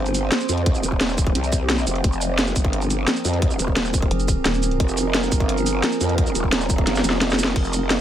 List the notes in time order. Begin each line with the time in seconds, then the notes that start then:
Already playing: G1 F3 C4 G#4 C5
0.06 closed hi-hat, shaker
0.15 closed hi-hat, shaker
0.32 snare, closed hi-hat
0.40 shaker
0.49 F2, closed hi-hat, shaker
0.58 closed hi-hat
0.66 kick, closed hi-hat
0.75 shaker
0.83 D#1, closed hi-hat, shaker
0.92 kick
1.01 snare, closed hi-hat
1.09 shaker
1.18 kick, closed hi-hat, shaker
1.27 kick, closed hi-hat
1.35 C2, closed hi-hat
1.44 closed hi-hat, shaker
1.52 kick, closed hi-hat, shaker
1.70 snare, closed hi-hat
1.78 shaker
1.87 F1, closed hi-hat, shaker
1.96 closed hi-hat
2.04 F1 A#4, kick, closed hi-hat
2.13 shaker
2.21 closed hi-hat, shaker
2.39 snare, closed hi-hat
2.47 shaker
2.56 G1, kick, closed hi-hat, shaker
2.65 kick, closed hi-hat
2.73 closed hi-hat
2.82 closed hi-hat, shaker
2.90 closed hi-hat, shaker
3.08 snare, closed hi-hat
3.16 shaker
3.25 F2, closed hi-hat, shaker
3.33 closed hi-hat
3.42 kick, closed hi-hat
3.51 shaker
3.59 D#1, closed hi-hat, shaker
3.68 kick
3.77 snare, closed hi-hat
3.85 shaker
3.94 kick, closed hi-hat, shaker
4.02 kick, closed hi-hat
4.11 F1, closed hi-hat
4.20 closed hi-hat, shaker
4.28 kick, closed hi-hat, shaker
4.45 D#1, snare, closed hi-hat
4.54 shaker
4.63 closed hi-hat, shaker
4.71 closed hi-hat
4.80 F1, kick, closed hi-hat
4.89 shaker
4.97 closed hi-hat, shaker
5.15 snare, closed hi-hat
5.23 shaker
5.32 G1, kick, closed hi-hat, shaker
5.40 kick, closed hi-hat
5.49 closed hi-hat
5.58 closed hi-hat, shaker
5.66 closed hi-hat, shaker
5.84 snare, closed hi-hat
5.92 shaker
6.01 F2, closed hi-hat, shaker
6.09 closed hi-hat
6.18 kick, closed hi-hat
6.27 shaker
6.35 D#1, closed hi-hat, shaker
6.44 kick
6.52 snare, closed hi-hat
6.61 shaker
6.70 kick, closed hi-hat, shaker
6.78 kick, closed hi-hat
6.87 G1, snare, closed hi-hat
6.96 snare, closed hi-hat, shaker
7.04 F1, closed hi-hat, shaker
7.10 snare
7.21 snare, closed hi-hat
7.30 snare, shaker
7.39 closed hi-hat, shaker
7.44 snare, closed hi-hat
7.56 F1 A#4, kick, closed hi-hat, crash
7.65 shaker
7.73 closed hi-hat, shaker
7.90 snare, closed hi-hat